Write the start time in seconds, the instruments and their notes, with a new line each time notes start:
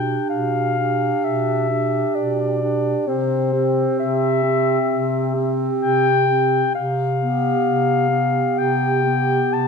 Already playing: bass clarinet B2, clarinet D4 G5, alto saxophone G4
0.29 bass clarinet B2, clarinet F5
0.78 clarinet D4, alto saxophone G4
1.24 bass clarinet B2, clarinet E5
1.69 clarinet D4, alto saxophone G4
2.15 bass clarinet B2, clarinet D5
2.61 clarinet D4, alto saxophone G4
3.07 bass clarinet C3, clarinet C4 C5, alto saxophone G4
3.53 clarinet C4, alto saxophone G4
3.97 bass clarinet C3, clarinet E5
4.43 clarinet C4, alto saxophone G4
4.90 bass clarinet C3
5.34 clarinet C4, alto saxophone G4
5.81 bass clarinet C3, clarinet G5
6.27 clarinet C4, alto saxophone G4
6.74 bass clarinet C3, clarinet F5
7.20 clarinet B3, alto saxophone G4
7.64 bass clarinet C3
8.09 clarinet B3, alto saxophone G4
8.58 bass clarinet C3, clarinet G5
9.03 clarinet B3, alto saxophone G4
9.52 bass clarinet C3, clarinet A5